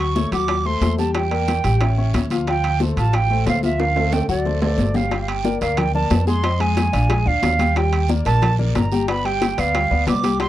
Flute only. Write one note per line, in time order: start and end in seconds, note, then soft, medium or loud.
0.00 0.33 C#6 medium
0.34 0.68 D6 medium
0.66 0.98 C6 medium
0.99 1.14 A5 medium
1.15 2.10 G5 medium
2.49 2.79 G5 medium
2.98 3.16 A5 medium
3.15 3.47 G5 loud
3.49 3.63 F5 medium
3.64 3.82 E5 medium
3.80 4.14 F5 medium
4.13 4.29 G5 medium
4.30 4.60 D5 medium
4.63 4.97 D5 medium
4.96 5.21 F5 medium
5.21 5.30 F5 medium
5.28 5.61 G5 medium
5.62 5.79 F5 medium
5.78 5.94 G5 medium
5.95 6.25 A5 medium
6.28 6.62 C6 medium
6.61 7.29 G#5 medium
7.28 7.79 F5 medium
7.77 8.10 G5 medium
8.26 8.54 A5 loud
8.77 9.07 A#5 medium
9.09 9.27 B5 loud
9.25 9.61 G5 medium
9.60 10.08 F5 medium
10.08 10.38 D6 medium
10.41 10.49 C6 loud